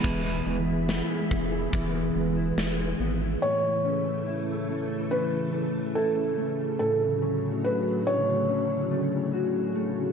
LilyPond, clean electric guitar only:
\new Staff \with { instrumentName = "Clean electric guitar" } { \time 4/4 \key a \major \tempo 4 = 71 e16 b16 gis16 e'16 b16 gis16 b16 e'16 e16 b16 gis16 e'16 b16 gis16 b16 e'16 | a,8 cis'8 e'8 a8 cis'8 a8 e'8 a8 | a,8 cis'8 fis'8 a8 cis'8 a8 fis'8 a8 | }